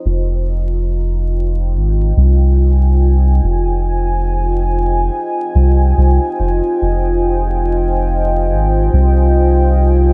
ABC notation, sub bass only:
X:1
M:4/4
L:1/8
Q:"Swing 16ths" 1/4=71
K:Fm
V:1 name="Sub bass" clef=bass
F,,,4 A,,, C,,3 | F,,,4 z C,, C,, F,,, | F,,,4 A,,, C,,3 |]